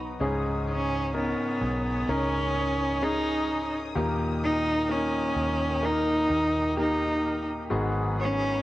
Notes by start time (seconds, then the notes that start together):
Already playing: B1 F#3 B3 D#4 F#4 B4 F#5 D#6
0.20 C#2 G#2 C#3 G#3 C#4 D#4 G#4 C#5 G#5 D#6
0.67 C#3 G#3 C#4 D#4 G#4
0.71 C#4
1.14 B3 C#4 D#4 A#4
1.61 B1 C#4 D#4 G#4
2.07 C#2 G#3 C#4 D#4 G#4 A#4
2.54 C#4 D#4 G#4
3.02 C#3 G#3 C#4 D#4 G#4
3.48 C#4 D#4 G#4
3.95 D#2 A#2 D#3 A#3 D#4 G4 A#4 G5
4.42 D#3 A#3 D#4 G4 A#4
4.89 A#3 C#4 D#4 A#4
5.36 D#2 D#4 G4 A#4
5.82 A#3 D#4 G4 A#4
6.29 D#2 D#4 G4 A#4
6.76 D#3 A#3 D#4 G4 A#4
7.23 D#4 G4 A#4
7.70 G#1 G#2 D#3 F#3 B3 D#4 F#4 G#4 F#5 B5
8.17 G#2 D#3 F#3 B3 C#4 D#4 G#4